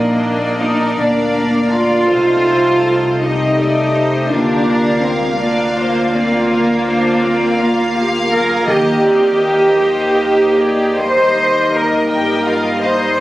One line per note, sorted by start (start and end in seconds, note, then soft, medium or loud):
0.00 0.94 A#1 medium
0.00 2.13 A#2 medium
0.00 0.58 A#3 medium
0.00 0.95 A#3 medium
0.00 2.13 A#3 medium
0.00 0.94 D4 medium
0.00 0.95 D4 medium
0.00 1.34 A#4 medium
0.00 2.06 A#4 medium
0.00 2.06 D5 medium
0.00 0.93 D#5 medium
0.23 1.72 D4 medium
0.60 0.97 D#4 medium
0.60 2.13 F4 soft
0.97 2.10 D2 medium
0.97 2.08 A#3 medium
0.97 2.10 A#3 medium
0.97 2.08 D4 medium
0.97 1.72 D4 medium
0.97 2.13 D5 medium
0.97 3.18 F5 medium
1.35 2.13 A#4 soft
1.72 2.13 D4 medium
1.72 3.21 F4 loud
2.09 4.31 C2 medium
2.09 4.35 C3 medium
2.09 3.19 A3 medium
2.09 3.18 C4 medium
2.09 3.19 D#4 medium
2.09 3.21 A4 medium
2.09 3.21 C5 medium
2.49 3.94 C4 medium
2.86 4.35 D#4 medium
3.20 4.29 A3 medium
3.20 3.57 C4 medium
3.20 4.29 D#4 medium
3.20 4.32 D#4 medium
3.20 5.39 G4 medium
3.20 4.35 C5 medium
3.20 3.57 D#5 medium
3.20 4.32 D#5 medium
3.57 3.94 A3 medium
3.57 4.35 A4 medium
3.57 3.95 D5 medium
3.95 4.31 A3 medium
3.95 4.35 C4 medium
3.95 4.32 C5 medium
4.30 8.67 D2 medium
4.30 6.50 D3 medium
4.30 5.37 A#3 medium
4.30 5.39 A#3 medium
4.30 5.01 D4 medium
4.30 5.37 F4 medium
4.30 5.39 A#4 medium
4.30 6.49 F5 medium
4.68 6.13 A#3 medium
5.03 5.21 C4 medium
5.03 5.76 F4 medium
5.21 5.39 G#3 medium
5.38 8.63 A#3 medium
5.38 8.31 A#3 loud
5.38 5.76 D4 medium
5.38 8.63 F4 medium
5.38 7.53 F4 medium
5.38 7.57 A#4 medium
5.38 5.76 D5 medium
5.77 6.13 D4 medium
5.77 7.21 F4 medium
5.77 6.14 C5 medium
6.13 8.30 A#3 medium
6.13 6.51 C4 medium
6.13 6.50 D5 medium
6.50 8.71 D3 medium
6.50 6.86 A#3 medium
6.50 6.86 A#4 medium
6.50 8.64 F5 medium
6.86 7.20 D4 medium
6.86 8.71 D4 medium
6.86 7.22 C5 medium
7.22 7.57 C4 medium
7.22 7.93 F4 medium
7.22 7.58 D5 medium
7.57 8.67 A#3 medium
7.57 7.93 F4 medium
7.57 9.38 A#4 medium
7.57 8.68 F5 medium
7.94 8.71 F4 medium
7.94 8.32 G4 medium
8.31 10.96 A#3 medium
8.31 8.67 G#4 medium
8.31 8.67 A#4 medium
8.67 12.05 D#2 medium
8.67 9.71 D#3 medium
8.67 12.58 D#3 medium
8.67 13.02 A#3 medium
8.67 9.03 A#3 medium
8.67 13.02 D#4 medium
8.67 10.96 G4 loud
8.67 9.76 A#4 medium
8.67 9.03 D#5 medium
8.67 10.96 D#5 medium
9.04 9.38 C4 medium
9.04 10.55 D#4 medium
9.04 9.39 D5 medium
9.39 9.75 A#3 medium
9.39 10.14 A#4 medium
9.39 9.75 C5 medium
9.76 10.94 A#3 medium
9.76 10.14 A#4 medium
9.76 10.14 C5 medium
9.76 12.09 D#5 medium
10.14 10.55 A#4 medium
10.14 11.72 A#4 soft
10.14 10.55 C5 medium
10.55 11.34 D#4 medium
10.55 10.95 G#4 medium
10.55 10.97 D5 medium
10.96 12.08 G3 medium
10.96 13.20 A#3 medium
10.96 12.08 G4 medium
10.96 11.72 C5 loud
10.96 12.10 D#5 medium
10.96 13.16 D#5 medium
11.35 12.82 D#4 medium
11.73 12.83 A#4 medium
11.73 12.47 A#4 medium
12.09 13.20 G2 medium
12.09 13.17 G3 medium
12.09 12.46 G4 medium
12.09 13.20 D#5 medium
12.09 12.45 G5 medium
12.45 12.83 F4 medium
12.45 13.20 A#4 medium
12.45 12.82 F5 medium
12.83 13.19 D#4 medium
12.83 13.20 D#4 medium
12.83 13.19 C5 medium
12.83 13.20 D#5 medium